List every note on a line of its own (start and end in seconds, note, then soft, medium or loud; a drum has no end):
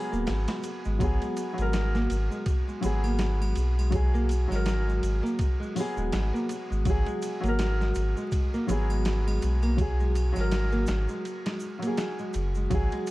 0.00 0.99 F#3 medium
0.00 0.10 B3 medium
0.00 1.02 G#4 loud
0.00 1.02 A#4 loud
0.12 0.26 D#1 medium
0.12 0.27 A#3 medium
0.12 shaker soft
0.26 0.47 G#1 medium
0.26 snare loud
0.26 ride medium
0.26 shaker soft
0.48 0.63 G#3 medium
0.48 snare loud
0.48 ride medium
0.48 shaker soft
0.63 ride medium
0.63 shaker medium
0.85 0.99 G#1 medium
0.85 1.00 G#3 medium
0.85 shaker soft
0.99 1.19 G#1 medium
0.99 1.52 F#3 medium
0.99 1.53 B3 medium
0.99 kick loud
0.99 ride medium
0.99 shaker soft
1.03 1.54 G#4 loud
1.22 1.36 G#3 medium
1.22 ride soft
1.22 shaker soft
1.37 ride medium
1.37 shaker loud
1.53 2.77 F#3 medium
1.58 2.07 G#1 medium
1.58 1.93 G#3 medium
1.58 2.81 A#4 loud
1.58 ride soft
1.58 shaker soft
1.73 snare loud
1.73 ride medium
1.73 shaker medium
1.95 2.09 A#3 loud
1.95 snare soft
1.95 shaker soft
2.10 2.29 G#1 loud
2.10 ride medium
2.10 shaker medium
2.31 2.46 G#3 medium
2.31 shaker soft
2.46 kick loud
2.46 ride medium
2.46 shaker soft
2.68 3.02 G#3 medium
2.68 shaker soft
2.81 3.54 G#1 medium
2.81 3.01 F#3 medium
2.81 3.02 B3 medium
2.81 ride medium
2.81 shaker medium
2.85 3.03 G#4 medium
3.04 3.19 A#3 medium
3.04 triangle medium
3.04 shaker soft
3.19 snare loud
3.19 ride medium
3.19 shaker medium
3.41 3.55 G#3 medium
3.41 triangle medium
3.41 shaker soft
3.56 4.47 B1 medium
3.56 ride medium
3.56 shaker medium
3.78 4.12 G#3 medium
3.78 triangle medium
3.78 shaker soft
3.90 4.44 F#3 medium
3.90 kick loud
3.90 ride medium
3.90 shaker soft
3.95 4.46 G#4 loud
4.14 4.29 A#3 loud
4.14 shaker soft
4.29 ride medium
4.29 triangle medium
4.29 shaker medium
4.48 5.00 G#1 medium
4.48 5.71 F#3 medium
4.48 4.65 G#3 medium
4.48 snare soft
4.52 5.75 A#4 medium
4.52 triangle medium
4.52 shaker soft
4.66 snare loud
4.66 ride medium
4.66 shaker medium
4.87 5.22 G#3 medium
4.87 shaker soft
5.03 5.21 G#1 medium
5.03 ride medium
5.03 shaker medium
5.23 5.38 A#3 loud
5.23 shaker soft
5.39 kick loud
5.39 ride medium
5.39 shaker medium
5.60 5.75 G#3 medium
5.60 shaker soft
5.75 5.95 F#3 medium
5.75 5.96 B3 medium
5.75 open hi-hat medium
5.75 shaker medium
5.80 5.97 G#4 loud
5.97 6.11 D#1 loud
5.97 6.31 G#3 medium
5.97 shaker soft
6.12 6.32 G#1 medium
6.12 snare loud
6.12 ride medium
6.12 shaker medium
6.33 6.48 A#3 medium
6.33 shaker soft
6.49 ride medium
6.49 shaker loud
6.70 6.84 G#1 medium
6.70 6.85 G#3 medium
6.70 shaker soft
6.85 7.04 G#1 medium
6.85 7.38 F#3 medium
6.85 kick loud
6.85 ride medium
6.85 shaker medium
6.90 7.40 G#4 loud
7.06 7.41 G#3 medium
7.06 ride soft
7.06 shaker soft
7.22 ride medium
7.22 shaker medium
7.40 7.92 G#1 loud
7.40 8.63 F#3 medium
7.40 7.58 A#3 loud
7.40 ride soft
7.45 8.67 A#4 loud
7.45 shaker soft
7.59 snare loud
7.59 ride medium
7.59 shaker soft
7.80 7.95 G#3 medium
7.80 snare soft
7.80 shaker soft
7.95 8.14 G#1 medium
7.95 ride medium
7.95 shaker medium
8.17 8.51 G#3 medium
8.17 shaker soft
8.31 kick loud
8.31 ride medium
8.31 shaker medium
8.54 8.68 A#3 loud
8.54 shaker soft
8.67 9.39 G#1 medium
8.67 8.87 F#3 medium
8.67 8.88 B3 medium
8.67 8.89 G#4 medium
8.67 ride medium
8.67 shaker loud
8.90 9.05 G#3 medium
8.90 triangle medium
8.90 shaker soft
9.05 snare loud
9.05 ride medium
9.05 shaker medium
9.26 9.61 G#3 medium
9.26 triangle medium
9.26 shaker soft
9.42 10.33 B1 medium
9.42 ride medium
9.42 shaker medium
9.62 9.78 A#3 loud
9.62 triangle medium
9.62 shaker soft
9.77 10.30 F#3 medium
9.77 kick loud
9.77 ride medium
9.77 shaker medium
9.81 10.32 G#4 loud
10.00 10.14 G#3 medium
10.00 shaker soft
10.15 ride medium
10.15 triangle medium
10.15 shaker medium
10.33 11.56 F#3 medium
10.33 10.71 G#3 medium
10.33 triangle medium
10.33 shaker soft
10.37 10.86 G#1 loud
10.37 11.60 A#4 loud
10.37 snare soft
10.52 snare loud
10.52 ride medium
10.52 shaker medium
10.72 10.87 A#3 loud
10.72 shaker soft
10.86 11.07 G#1 medium
10.86 snare loud
10.86 ride medium
10.86 shaker medium
11.08 11.24 G#3 medium
11.08 shaker soft
11.25 ride medium
11.25 shaker soft
11.45 11.80 G#3 medium
11.45 snare medium
11.45 ride medium
11.45 shaker soft
11.60 shaker medium
11.79 12.65 F#3 medium
11.79 11.97 A#3 loud
11.79 ride medium
11.83 shaker soft
11.87 12.70 G#4 medium
11.97 snare loud
11.97 ride medium
11.97 shaker medium
12.19 12.34 G#3 medium
12.19 shaker soft
12.33 12.68 F#1 medium
12.33 ride medium
12.33 shaker medium
12.54 12.90 G#3 medium
12.54 shaker soft
12.70 12.90 G#1 loud
12.70 13.11 F#3 medium
12.70 kick loud
12.70 ride medium
12.70 shaker soft
12.74 13.11 G#4 loud
12.91 13.07 G#3 medium
12.91 ride soft
12.91 shaker soft
13.07 ride medium
13.07 shaker medium